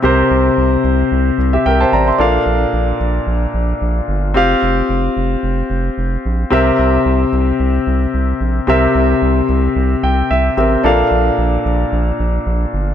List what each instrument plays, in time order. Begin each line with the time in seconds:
0.02 analog synth bass C2, grand piano C3 C4 G4 A#4 C5
0.31 analog synth bass C2
0.58 analog synth bass C2
0.84 analog synth bass C2
1.12 analog synth bass C2
1.38 analog synth bass C2
1.53 grand piano G4 E5
1.66 analog synth bass C2, grand piano A#4 G5
1.81 grand piano C5 A5
1.93 analog synth bass A1, grand piano D5 A#5
2.08 grand piano E5 C6
2.18 analog synth bass A#1, grand piano A#2 D4 A4 A#4 F5
2.46 analog synth bass A#1
2.73 analog synth bass A#1
3.00 analog synth bass A#1
3.27 analog synth bass A#1
3.54 analog synth bass A#1
3.81 analog synth bass A#1
4.08 analog synth bass G1
4.34 analog synth bass F1, grand piano C4 F4 G4 F5
4.63 analog synth bass F1
4.89 analog synth bass F1
5.17 analog synth bass F1
5.43 analog synth bass F1
5.70 analog synth bass F1
5.98 analog synth bass F1
6.26 analog synth bass A#1
6.50 analog synth bass C2, grand piano C3 C4 G4 A#4 E5
6.79 analog synth bass C2
7.06 analog synth bass C2
7.33 analog synth bass C2
7.60 analog synth bass C2
7.87 analog synth bass C2
8.14 analog synth bass C2
8.41 analog synth bass A#1
8.67 analog synth bass C2, grand piano C3 C4 G4 A#4 E5
8.95 analog synth bass C2
9.22 analog synth bass C2
9.49 analog synth bass C2
9.76 analog synth bass C2
10.03 analog synth bass C2, grand piano G5
10.31 analog synth bass C2, grand piano E5
10.57 analog synth bass A1, grand piano C4 G4 A#4 E5
10.83 analog synth bass A#1, grand piano A#2 D4 A4 A#4 F5
11.11 analog synth bass A#1
11.38 analog synth bass A#1
11.65 analog synth bass A#1
11.92 analog synth bass A#1
12.20 analog synth bass A#1
12.46 analog synth bass A#1
12.74 analog synth bass G1